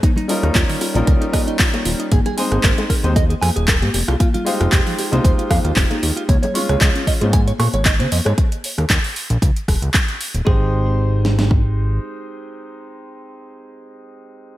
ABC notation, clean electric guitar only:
X:1
M:4/4
L:1/16
Q:"Swing 16ths" 1/4=115
K:Ab
V:1 name="Clean electric guitar"
E E e E F E, F B, B E e E F D F E | A A a A B A, B E e A a A B G G F | F F f F G F, G C c F f F G E G F | d d d' d e D e A a d d' d e c e d |
z16 | A2 z12 z2 | z16 |]